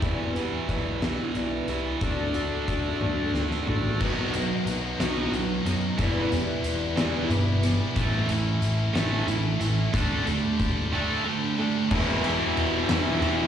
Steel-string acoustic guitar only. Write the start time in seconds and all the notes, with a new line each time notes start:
0.02 E2 B2 E3 G3 B3 E4
0.34 E3 G3 B3 E4
0.68 E3 G3 B3 E4
1.02 E3 G3 B3 E4
1.35 E3 G3 B3 E4
1.68 E3 G3 B3 E4
2.01 D3 A3 D4 F#4
2.33 A3 D4 F#4
2.68 D3 A3 D4 F#4
3.00 A3 D4 F#4
3.34 D3 A3 D4 F#4
3.67 A3 D4 F#4
4.01 B2 F#3 B3 D#4 F#4
4.34 B3 D#4 F#4
4.66 F#3 B3 D#4 F#4
5.00 B2 F#3 B3 D#4 F#4
5.33 F#3 B3 D#4 F#4
5.99 E2 B2 E3 G3 B3 E4
6.32 E3 G3 B3 E4
6.65 E3 G3 B3 E4
6.97 E2 B2 E3 G3 B3 E4
7.30 E3 G3 B3 E4